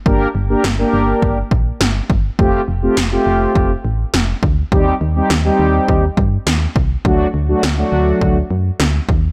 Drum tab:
SD |--o---o-|--o---o-|--o---o-|--o---o-|
BD |o---oo-o|o---o--o|o---oo-o|o---o--o|